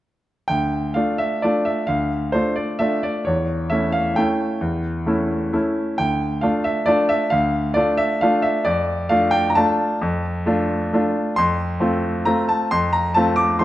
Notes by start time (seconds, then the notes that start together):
0.48 D2 G5
0.94 A3 D4 F4 F5
1.18 E5
1.42 A3 D4 F4 D5
1.65 E5
1.87 D2 F5
2.32 A3 D4 F4 C5
2.56 D5
2.79 A3 D4 F4 E5
3.03 D5
3.25 E2 C#5
3.70 A3 C#4 E4 E5
3.92 F5
4.16 A3 C#4 E4 G5
4.61 E2
5.06 A3 C#4 E4
5.53 A3 C#4 E4
5.98 D2 G5
6.41 A3 D4 F4 F5
6.64 E5
6.86 A3 D4 F4 D5
7.09 E5
7.30 D2 F5
7.74 A3 D4 F4 D5
7.97 E5
8.21 A3 D4 F4 F5
8.42 E5
8.65 F2 D5
9.09 A3 D4 F4 F5
9.31 G5
9.50 A#5
9.55 A3 D4 F4 A5
10.02 F2
10.46 A3 D4 F4
10.93 A3 D4 F4
11.36 F2 C6
11.80 A3 C4 F4
12.25 A3 C4 F4 A#5
12.49 A5
12.71 F2 C6
12.93 A#5
13.14 A3 C4 F4 A5
13.36 D6
13.59 A3 C4 F4 C6